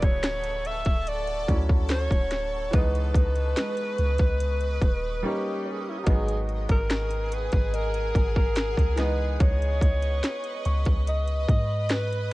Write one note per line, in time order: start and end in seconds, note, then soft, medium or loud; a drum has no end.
0.00 0.83 D1 loud
0.00 1.46 C#3 medium
0.00 1.43 F#3 medium
0.00 1.44 A3 medium
0.00 1.47 E4 medium
0.00 1.80 A4 medium
0.00 2.70 A4 medium
0.00 2.70 F#5 medium
0.00 2.70 A5 medium
0.00 6.03 C#6 medium
0.00 kick loud
0.00 closed hi-hat soft
0.04 0.68 C#5 loud
0.23 snare loud
0.23 closed hi-hat medium
0.43 closed hi-hat medium
0.65 1.10 E5 loud
0.65 closed hi-hat medium
0.85 1.46 D1 loud
0.85 kick medium
0.85 closed hi-hat medium
1.07 1.64 D5 loud
1.07 closed hi-hat medium
1.27 closed hi-hat medium
1.48 2.08 D2 loud
1.48 2.73 F#3 medium
1.48 2.74 A3 soft
1.48 2.74 C#4 soft
1.48 2.75 E4 medium
1.48 kick medium
1.48 closed hi-hat soft
1.69 kick loud
1.89 2.70 C#5 loud
1.89 snare loud
1.89 closed hi-hat medium
2.11 2.71 D1 loud
2.11 kick medium
2.11 closed hi-hat soft
2.31 snare medium
2.31 closed hi-hat medium
2.71 3.13 C#2 loud
2.71 5.18 E3 medium
2.71 5.19 G#3 medium
2.71 5.21 B4 medium
2.71 5.21 D#5 medium
2.71 12.33 D#6 medium
2.71 kick loud
2.71 closed hi-hat medium
2.75 5.21 B3 medium
2.75 5.22 D#4 medium
2.75 5.27 B4 loud
2.95 closed hi-hat soft
3.15 3.55 C#2 loud
3.15 kick loud
3.15 closed hi-hat medium
3.36 closed hi-hat soft
3.57 5.61 G#3 medium
3.57 snare loud
3.57 closed hi-hat medium
3.77 closed hi-hat medium
3.98 4.19 C#2 loud
3.98 closed hi-hat medium
4.18 4.79 C#2 medium
4.18 kick medium
4.18 closed hi-hat medium
4.40 closed hi-hat medium
4.61 closed hi-hat soft
4.82 5.24 D#1 loud
4.82 kick medium
4.82 closed hi-hat soft
5.23 6.07 G3 medium
5.23 6.07 A#3 medium
5.23 6.08 C#4 medium
5.23 6.08 D#4 medium
5.23 5.73 G4 loud
5.65 6.45 C#5 medium
5.72 5.82 G#4 medium
5.81 5.91 G4 medium
5.90 6.01 E4 medium
5.99 6.10 G4 medium
6.04 6.67 G#1 loud
6.04 8.93 F#3 medium
6.04 8.94 G#3 medium
6.04 8.96 G#4 medium
6.04 8.96 F#5 medium
6.04 8.96 G#5 medium
6.04 kick loud
6.04 closed hi-hat medium
6.08 8.95 B3 medium
6.08 8.97 D#4 medium
6.08 6.43 G#4 loud
6.29 closed hi-hat soft
6.49 closed hi-hat medium
6.69 7.49 G#1 loud
6.69 7.35 A#4 loud
6.69 kick loud
6.69 closed hi-hat soft
6.90 snare loud
6.90 closed hi-hat medium
7.11 closed hi-hat medium
7.32 7.76 B4 loud
7.32 closed hi-hat medium
7.52 8.13 G#1 loud
7.52 kick medium
7.52 closed hi-hat medium
7.74 8.37 A#4 medium
7.74 9.36 D#5 medium
7.74 closed hi-hat medium
7.94 closed hi-hat medium
8.15 8.75 G#1 loud
8.15 kick medium
8.15 closed hi-hat soft
8.36 8.95 A#4 loud
8.36 kick medium
8.56 snare loud
8.56 closed hi-hat medium
8.78 9.38 C#2 loud
8.78 kick medium
8.78 closed hi-hat soft
8.96 12.26 E3 medium
8.96 12.28 G#3 medium
8.96 12.33 B4 medium
8.96 12.33 D#5 medium
8.96 10.64 C#6 medium
8.96 snare medium
8.96 closed hi-hat medium
9.00 12.29 B3 medium
9.00 12.30 D#4 medium
9.00 9.43 B4 medium
9.40 9.80 C#2 loud
9.40 10.81 C#5 loud
9.40 kick loud
9.40 closed hi-hat medium
9.62 closed hi-hat soft
9.81 10.22 C#2 loud
9.81 kick loud
9.81 closed hi-hat medium
10.02 closed hi-hat soft
10.24 snare loud
10.24 closed hi-hat medium
10.44 closed hi-hat medium
10.65 10.85 C#2 loud
10.65 12.33 B5 medium
10.65 12.33 C#6 medium
10.65 closed hi-hat medium
10.85 11.46 C#2 medium
10.85 kick medium
10.85 closed hi-hat medium
11.07 11.46 D#5 loud
11.07 closed hi-hat medium
11.27 closed hi-hat medium
11.48 12.33 G#2 loud
11.48 11.93 D#5 loud
11.48 kick loud
11.48 closed hi-hat soft
11.89 12.33 B4 loud
11.89 snare loud
11.89 closed hi-hat medium
12.12 closed hi-hat soft